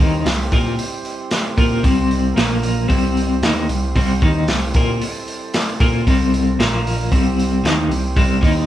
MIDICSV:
0, 0, Header, 1, 5, 480
1, 0, Start_track
1, 0, Tempo, 526316
1, 1679, Time_signature, 4, 2, 24, 8
1, 7898, End_track
2, 0, Start_track
2, 0, Title_t, "Transistor combo organ"
2, 0, Program_c, 0, 18
2, 0, Note_on_c, 0, 55, 67
2, 0, Note_on_c, 0, 60, 65
2, 0, Note_on_c, 0, 64, 67
2, 0, Note_on_c, 0, 67, 62
2, 0, Note_on_c, 0, 72, 77
2, 2130, Note_on_c, 0, 53, 69
2, 2133, Note_off_c, 0, 72, 0
2, 2133, Note_on_c, 0, 70, 65
2, 2134, Note_on_c, 0, 58, 67
2, 2136, Note_off_c, 0, 67, 0
2, 2137, Note_off_c, 0, 55, 0
2, 2138, Note_off_c, 0, 60, 0
2, 2138, Note_off_c, 0, 64, 0
2, 2143, Note_on_c, 0, 65, 64
2, 2145, Note_on_c, 0, 77, 77
2, 2616, Note_on_c, 0, 72, 78
2, 2620, Note_off_c, 0, 53, 0
2, 2622, Note_off_c, 0, 58, 0
2, 2622, Note_off_c, 0, 70, 0
2, 2622, Note_on_c, 0, 55, 69
2, 2622, Note_on_c, 0, 64, 57
2, 2627, Note_off_c, 0, 65, 0
2, 2628, Note_off_c, 0, 77, 0
2, 2628, Note_on_c, 0, 60, 67
2, 2631, Note_on_c, 0, 67, 57
2, 4537, Note_off_c, 0, 67, 0
2, 4560, Note_on_c, 0, 69, 62
2, 5955, Note_off_c, 0, 72, 0
2, 5958, Note_off_c, 0, 55, 0
2, 5958, Note_off_c, 0, 64, 0
2, 5961, Note_off_c, 0, 60, 0
2, 5986, Note_off_c, 0, 69, 0
2, 6020, Note_on_c, 0, 58, 63
2, 6020, Note_on_c, 0, 77, 82
2, 6021, Note_on_c, 0, 53, 66
2, 6021, Note_on_c, 0, 65, 70
2, 6029, Note_on_c, 0, 70, 67
2, 6476, Note_on_c, 0, 60, 65
2, 6478, Note_on_c, 0, 67, 65
2, 6481, Note_on_c, 0, 64, 65
2, 6482, Note_on_c, 0, 55, 67
2, 6483, Note_on_c, 0, 72, 79
2, 6485, Note_off_c, 0, 58, 0
2, 6485, Note_off_c, 0, 77, 0
2, 6486, Note_off_c, 0, 53, 0
2, 6486, Note_off_c, 0, 65, 0
2, 6490, Note_off_c, 0, 70, 0
2, 7898, Note_off_c, 0, 55, 0
2, 7898, Note_off_c, 0, 60, 0
2, 7898, Note_off_c, 0, 64, 0
2, 7898, Note_off_c, 0, 67, 0
2, 7898, Note_off_c, 0, 72, 0
2, 7898, End_track
3, 0, Start_track
3, 0, Title_t, "Clean electric guitar"
3, 0, Program_c, 1, 27
3, 0, Note_on_c, 1, 51, 86
3, 0, Note_on_c, 1, 58, 91
3, 0, Note_on_c, 1, 63, 109
3, 223, Note_off_c, 1, 51, 0
3, 224, Note_off_c, 1, 58, 0
3, 227, Note_off_c, 1, 63, 0
3, 228, Note_on_c, 1, 48, 68
3, 232, Note_on_c, 1, 55, 70
3, 425, Note_off_c, 1, 48, 0
3, 427, Note_off_c, 1, 55, 0
3, 477, Note_on_c, 1, 58, 75
3, 479, Note_on_c, 1, 65, 98
3, 481, Note_on_c, 1, 70, 88
3, 710, Note_off_c, 1, 58, 0
3, 711, Note_off_c, 1, 65, 0
3, 712, Note_off_c, 1, 70, 0
3, 1432, Note_on_c, 1, 58, 89
3, 1436, Note_on_c, 1, 65, 89
3, 1441, Note_on_c, 1, 70, 102
3, 1667, Note_off_c, 1, 58, 0
3, 1670, Note_on_c, 1, 48, 91
3, 1671, Note_off_c, 1, 65, 0
3, 1671, Note_on_c, 1, 55, 90
3, 1673, Note_off_c, 1, 70, 0
3, 1676, Note_on_c, 1, 60, 117
3, 2148, Note_off_c, 1, 48, 0
3, 2148, Note_off_c, 1, 55, 0
3, 2151, Note_off_c, 1, 60, 0
3, 2154, Note_on_c, 1, 46, 92
3, 2155, Note_on_c, 1, 53, 109
3, 2162, Note_on_c, 1, 58, 119
3, 2623, Note_off_c, 1, 46, 0
3, 2625, Note_off_c, 1, 53, 0
3, 2627, Note_on_c, 1, 48, 78
3, 2628, Note_off_c, 1, 58, 0
3, 2629, Note_on_c, 1, 55, 79
3, 2632, Note_on_c, 1, 60, 97
3, 3107, Note_off_c, 1, 48, 0
3, 3107, Note_off_c, 1, 55, 0
3, 3109, Note_off_c, 1, 60, 0
3, 3127, Note_on_c, 1, 51, 93
3, 3129, Note_on_c, 1, 58, 89
3, 3132, Note_on_c, 1, 63, 103
3, 3357, Note_off_c, 1, 51, 0
3, 3358, Note_off_c, 1, 58, 0
3, 3359, Note_off_c, 1, 63, 0
3, 3367, Note_on_c, 1, 48, 70
3, 3376, Note_on_c, 1, 55, 79
3, 3556, Note_off_c, 1, 48, 0
3, 3561, Note_off_c, 1, 55, 0
3, 3606, Note_on_c, 1, 48, 91
3, 3614, Note_on_c, 1, 55, 109
3, 3614, Note_on_c, 1, 60, 99
3, 3836, Note_off_c, 1, 48, 0
3, 3840, Note_off_c, 1, 55, 0
3, 3840, Note_off_c, 1, 60, 0
3, 3847, Note_on_c, 1, 51, 86
3, 3853, Note_on_c, 1, 58, 89
3, 3856, Note_on_c, 1, 63, 92
3, 4077, Note_off_c, 1, 51, 0
3, 4080, Note_off_c, 1, 58, 0
3, 4081, Note_off_c, 1, 63, 0
3, 4095, Note_on_c, 1, 48, 71
3, 4280, Note_off_c, 1, 48, 0
3, 4339, Note_on_c, 1, 58, 88
3, 4343, Note_on_c, 1, 65, 88
3, 4345, Note_on_c, 1, 70, 95
3, 4563, Note_off_c, 1, 58, 0
3, 4565, Note_off_c, 1, 65, 0
3, 4566, Note_off_c, 1, 70, 0
3, 5291, Note_on_c, 1, 58, 93
3, 5298, Note_on_c, 1, 65, 103
3, 5300, Note_on_c, 1, 70, 98
3, 5519, Note_off_c, 1, 58, 0
3, 5522, Note_off_c, 1, 65, 0
3, 5523, Note_off_c, 1, 70, 0
3, 5534, Note_on_c, 1, 48, 98
3, 5537, Note_on_c, 1, 60, 108
3, 5538, Note_on_c, 1, 55, 104
3, 6000, Note_off_c, 1, 48, 0
3, 6002, Note_off_c, 1, 55, 0
3, 6002, Note_off_c, 1, 60, 0
3, 6011, Note_on_c, 1, 46, 97
3, 6017, Note_on_c, 1, 53, 101
3, 6018, Note_on_c, 1, 58, 108
3, 6478, Note_off_c, 1, 46, 0
3, 6481, Note_off_c, 1, 53, 0
3, 6482, Note_off_c, 1, 58, 0
3, 6488, Note_on_c, 1, 48, 76
3, 6495, Note_on_c, 1, 55, 95
3, 6495, Note_on_c, 1, 60, 105
3, 6956, Note_off_c, 1, 48, 0
3, 6960, Note_off_c, 1, 55, 0
3, 6960, Note_off_c, 1, 60, 0
3, 6965, Note_on_c, 1, 58, 109
3, 6967, Note_on_c, 1, 51, 92
3, 6974, Note_on_c, 1, 63, 105
3, 7195, Note_off_c, 1, 58, 0
3, 7196, Note_off_c, 1, 51, 0
3, 7200, Note_off_c, 1, 63, 0
3, 7217, Note_on_c, 1, 48, 66
3, 7220, Note_on_c, 1, 55, 81
3, 7400, Note_off_c, 1, 48, 0
3, 7402, Note_off_c, 1, 55, 0
3, 7443, Note_on_c, 1, 48, 104
3, 7448, Note_on_c, 1, 55, 98
3, 7448, Note_on_c, 1, 60, 100
3, 7665, Note_off_c, 1, 48, 0
3, 7669, Note_on_c, 1, 51, 94
3, 7670, Note_off_c, 1, 55, 0
3, 7674, Note_on_c, 1, 58, 106
3, 7675, Note_off_c, 1, 60, 0
3, 7679, Note_on_c, 1, 63, 99
3, 7898, Note_off_c, 1, 51, 0
3, 7898, Note_off_c, 1, 58, 0
3, 7898, Note_off_c, 1, 63, 0
3, 7898, End_track
4, 0, Start_track
4, 0, Title_t, "Picked electric bass"
4, 0, Program_c, 2, 34
4, 0, Note_on_c, 2, 39, 97
4, 218, Note_off_c, 2, 39, 0
4, 224, Note_on_c, 2, 36, 82
4, 454, Note_off_c, 2, 36, 0
4, 468, Note_on_c, 2, 46, 90
4, 696, Note_off_c, 2, 46, 0
4, 1436, Note_on_c, 2, 46, 98
4, 1661, Note_off_c, 2, 46, 0
4, 1683, Note_on_c, 2, 36, 93
4, 2128, Note_off_c, 2, 36, 0
4, 2150, Note_on_c, 2, 34, 89
4, 2601, Note_off_c, 2, 34, 0
4, 2640, Note_on_c, 2, 36, 97
4, 3087, Note_off_c, 2, 36, 0
4, 3115, Note_on_c, 2, 39, 92
4, 3341, Note_off_c, 2, 39, 0
4, 3362, Note_on_c, 2, 36, 81
4, 3584, Note_off_c, 2, 36, 0
4, 3608, Note_on_c, 2, 36, 102
4, 3828, Note_off_c, 2, 36, 0
4, 3844, Note_on_c, 2, 39, 95
4, 4066, Note_off_c, 2, 39, 0
4, 4081, Note_on_c, 2, 36, 76
4, 4304, Note_off_c, 2, 36, 0
4, 4327, Note_on_c, 2, 46, 103
4, 4547, Note_off_c, 2, 46, 0
4, 5291, Note_on_c, 2, 46, 92
4, 5509, Note_off_c, 2, 46, 0
4, 5533, Note_on_c, 2, 36, 88
4, 5973, Note_off_c, 2, 36, 0
4, 6005, Note_on_c, 2, 34, 97
4, 6449, Note_off_c, 2, 34, 0
4, 6489, Note_on_c, 2, 36, 105
4, 6931, Note_off_c, 2, 36, 0
4, 6968, Note_on_c, 2, 39, 93
4, 7187, Note_off_c, 2, 39, 0
4, 7192, Note_on_c, 2, 36, 87
4, 7419, Note_off_c, 2, 36, 0
4, 7443, Note_on_c, 2, 36, 96
4, 7665, Note_off_c, 2, 36, 0
4, 7683, Note_on_c, 2, 39, 95
4, 7898, Note_off_c, 2, 39, 0
4, 7898, End_track
5, 0, Start_track
5, 0, Title_t, "Drums"
5, 0, Note_on_c, 9, 36, 104
5, 87, Note_off_c, 9, 36, 0
5, 236, Note_on_c, 9, 46, 74
5, 243, Note_on_c, 9, 38, 106
5, 327, Note_off_c, 9, 46, 0
5, 334, Note_off_c, 9, 38, 0
5, 475, Note_on_c, 9, 36, 107
5, 475, Note_on_c, 9, 46, 53
5, 566, Note_off_c, 9, 36, 0
5, 566, Note_off_c, 9, 46, 0
5, 717, Note_on_c, 9, 46, 65
5, 808, Note_off_c, 9, 46, 0
5, 956, Note_on_c, 9, 46, 46
5, 1047, Note_off_c, 9, 46, 0
5, 1192, Note_on_c, 9, 46, 79
5, 1198, Note_on_c, 9, 38, 104
5, 1283, Note_off_c, 9, 46, 0
5, 1289, Note_off_c, 9, 38, 0
5, 1438, Note_on_c, 9, 36, 108
5, 1439, Note_on_c, 9, 46, 58
5, 1529, Note_off_c, 9, 36, 0
5, 1531, Note_off_c, 9, 46, 0
5, 1679, Note_on_c, 9, 46, 64
5, 1680, Note_on_c, 9, 36, 96
5, 1770, Note_off_c, 9, 46, 0
5, 1771, Note_off_c, 9, 36, 0
5, 1924, Note_on_c, 9, 46, 47
5, 2015, Note_off_c, 9, 46, 0
5, 2163, Note_on_c, 9, 46, 74
5, 2169, Note_on_c, 9, 38, 101
5, 2254, Note_off_c, 9, 46, 0
5, 2260, Note_off_c, 9, 38, 0
5, 2400, Note_on_c, 9, 46, 61
5, 2491, Note_off_c, 9, 46, 0
5, 2642, Note_on_c, 9, 46, 76
5, 2643, Note_on_c, 9, 36, 97
5, 2733, Note_off_c, 9, 46, 0
5, 2734, Note_off_c, 9, 36, 0
5, 2891, Note_on_c, 9, 46, 53
5, 2982, Note_off_c, 9, 46, 0
5, 3125, Note_on_c, 9, 46, 82
5, 3131, Note_on_c, 9, 38, 121
5, 3216, Note_off_c, 9, 46, 0
5, 3223, Note_off_c, 9, 38, 0
5, 3367, Note_on_c, 9, 46, 61
5, 3458, Note_off_c, 9, 46, 0
5, 3608, Note_on_c, 9, 46, 82
5, 3609, Note_on_c, 9, 36, 104
5, 3699, Note_off_c, 9, 46, 0
5, 3700, Note_off_c, 9, 36, 0
5, 3847, Note_on_c, 9, 46, 57
5, 3849, Note_on_c, 9, 36, 97
5, 3938, Note_off_c, 9, 46, 0
5, 3940, Note_off_c, 9, 36, 0
5, 4084, Note_on_c, 9, 46, 79
5, 4091, Note_on_c, 9, 38, 96
5, 4175, Note_off_c, 9, 46, 0
5, 4182, Note_off_c, 9, 38, 0
5, 4323, Note_on_c, 9, 46, 61
5, 4329, Note_on_c, 9, 36, 110
5, 4414, Note_off_c, 9, 46, 0
5, 4421, Note_off_c, 9, 36, 0
5, 4573, Note_on_c, 9, 46, 77
5, 4664, Note_off_c, 9, 46, 0
5, 4812, Note_on_c, 9, 46, 50
5, 4903, Note_off_c, 9, 46, 0
5, 5049, Note_on_c, 9, 46, 80
5, 5056, Note_on_c, 9, 38, 121
5, 5141, Note_off_c, 9, 46, 0
5, 5147, Note_off_c, 9, 38, 0
5, 5292, Note_on_c, 9, 46, 58
5, 5294, Note_on_c, 9, 36, 118
5, 5383, Note_off_c, 9, 46, 0
5, 5385, Note_off_c, 9, 36, 0
5, 5536, Note_on_c, 9, 36, 107
5, 5539, Note_on_c, 9, 46, 77
5, 5627, Note_off_c, 9, 36, 0
5, 5631, Note_off_c, 9, 46, 0
5, 5780, Note_on_c, 9, 46, 54
5, 5871, Note_off_c, 9, 46, 0
5, 6018, Note_on_c, 9, 46, 69
5, 6024, Note_on_c, 9, 38, 109
5, 6109, Note_off_c, 9, 46, 0
5, 6115, Note_off_c, 9, 38, 0
5, 6265, Note_on_c, 9, 46, 59
5, 6356, Note_off_c, 9, 46, 0
5, 6492, Note_on_c, 9, 36, 96
5, 6496, Note_on_c, 9, 46, 64
5, 6583, Note_off_c, 9, 36, 0
5, 6587, Note_off_c, 9, 46, 0
5, 6743, Note_on_c, 9, 46, 53
5, 6834, Note_off_c, 9, 46, 0
5, 6979, Note_on_c, 9, 46, 84
5, 6985, Note_on_c, 9, 38, 110
5, 7070, Note_off_c, 9, 46, 0
5, 7076, Note_off_c, 9, 38, 0
5, 7216, Note_on_c, 9, 46, 55
5, 7308, Note_off_c, 9, 46, 0
5, 7447, Note_on_c, 9, 36, 105
5, 7450, Note_on_c, 9, 46, 81
5, 7538, Note_off_c, 9, 36, 0
5, 7541, Note_off_c, 9, 46, 0
5, 7686, Note_on_c, 9, 36, 92
5, 7695, Note_on_c, 9, 46, 60
5, 7778, Note_off_c, 9, 36, 0
5, 7786, Note_off_c, 9, 46, 0
5, 7898, End_track
0, 0, End_of_file